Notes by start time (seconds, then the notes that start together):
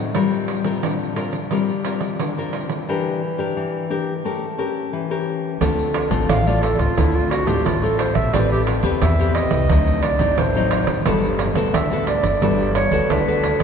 Already playing: A2 D#4
0.15 G3 C4 F4 A#4, pandeiro
0.33 pandeiro
0.48 pandeiro
0.64 C4 F4 A#4, pandeiro
0.83 D3, pandeiro
1.01 pandeiro
1.16 C4 F4 A#4, pandeiro
1.33 pandeiro
1.51 G3 C4 F4 A#4, pandeiro
1.69 pandeiro
1.85 C4 F4 A#4, pandeiro
2.01 pandeiro
2.19 D3, pandeiro
2.37 C4 F4 A#4, pandeiro
2.53 pandeiro
2.69 pandeiro
2.89 E3 D4 G4 A#4
3.38 D4 G4 A#4
3.57 E3
3.90 D4 G4 A#4
4.25 A3 C#4 G4 A#4
4.58 C#4 G4 A#4
4.93 E3
5.11 C#4 G4 A#4
5.61 D2 D3 A3 C4 F4, pandeiro
5.79 pandeiro
5.94 pandeiro
6.11 A1 A3 C4 F4, pandeiro
6.29 A1 A2 F5, pandeiro
6.47 A3 C4 F4 D5, pandeiro
6.62 A4, pandeiro
6.78 D2 F4, pandeiro
6.97 D2 D3 A3 C4 E4 F4, pandeiro
7.15 F4, pandeiro
7.31 F#4, pandeiro
7.47 A1 A3 C4 F4 G4, pandeiro
7.65 A1 A2 F4, pandeiro
7.83 A3 C4 F4 A4, pandeiro
7.99 C5, pandeiro
8.15 A#1 E5, pandeiro
8.33 A1 A3 C4 G4 B4 D5, pandeiro
8.51 G4, pandeiro
8.67 pandeiro
8.83 E2 C4 G4 B4, pandeiro
9.02 E2 E3 E5, pandeiro
9.19 C4 G4 B4, pandeiro
9.35 D#5, pandeiro
9.51 C2, pandeiro
9.69 D2 D3 F#3 C4 D#4, pandeiro
9.87 pandeiro
10.03 D5, pandeiro
10.19 A1 F#3 C4 D#4, pandeiro
10.38 A1 A2 C5, pandeiro
10.55 F#3 C4 D#4, pandeiro
10.71 pandeiro
10.87 D3, pandeiro
11.06 G1 G3 B3 F#4 A4, pandeiro
11.24 pandeiro
11.39 pandeiro
11.55 D2 B3 F#4 A4, pandeiro
11.73 D2 D3 E5, pandeiro
11.92 B3 F#4 A4, pandeiro
12.07 D5, pandeiro
12.23 G1, pandeiro
12.42 G1 G3 B3 F#4 A4, pandeiro
12.60 pandeiro
12.75 C#5, pandeiro
12.91 D2 B3 F#4 A4, pandeiro
13.10 D2 D3 B4, pandeiro
13.28 B3 F#4 A4, pandeiro
13.44 pandeiro
13.59 F#1, pandeiro